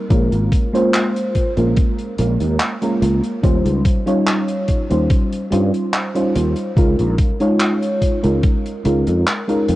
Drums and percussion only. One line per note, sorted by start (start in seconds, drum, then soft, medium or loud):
0.10 kick loud
0.10 closed hi-hat medium
0.32 closed hi-hat soft
0.52 kick loud
0.52 closed hi-hat medium
0.75 closed hi-hat medium
0.94 clap loud
0.94 closed hi-hat medium
1.16 closed hi-hat medium
1.35 kick medium
1.35 closed hi-hat medium
1.57 closed hi-hat soft
1.76 kick loud
1.76 closed hi-hat medium
1.98 closed hi-hat soft
2.18 closed hi-hat medium
2.40 closed hi-hat medium
2.59 clap loud
2.59 closed hi-hat medium
2.82 closed hi-hat medium
3.02 closed hi-hat medium
3.23 closed hi-hat medium
3.43 kick loud
3.43 closed hi-hat medium
3.66 closed hi-hat medium
3.85 kick loud
3.85 closed hi-hat loud
4.07 closed hi-hat soft
4.27 clap loud
4.27 closed hi-hat medium
4.48 closed hi-hat medium
4.68 kick medium
4.68 closed hi-hat medium
4.91 closed hi-hat medium
5.10 kick loud
5.10 closed hi-hat medium
5.33 closed hi-hat medium
5.52 closed hi-hat loud
5.74 closed hi-hat medium
5.93 clap loud
5.93 closed hi-hat medium
6.15 closed hi-hat medium
6.35 closed hi-hat medium
6.56 closed hi-hat medium
6.77 kick loud
6.77 closed hi-hat medium
6.99 closed hi-hat soft
7.18 kick loud
7.18 closed hi-hat medium
7.40 closed hi-hat soft
7.60 clap loud
7.60 closed hi-hat medium
7.83 closed hi-hat medium
8.02 kick medium
8.02 closed hi-hat medium
8.24 closed hi-hat medium
8.43 kick loud
8.43 closed hi-hat medium
8.66 closed hi-hat medium
8.85 closed hi-hat medium
9.07 closed hi-hat medium
9.27 clap loud
9.27 closed hi-hat medium
9.49 closed hi-hat medium
9.68 closed hi-hat medium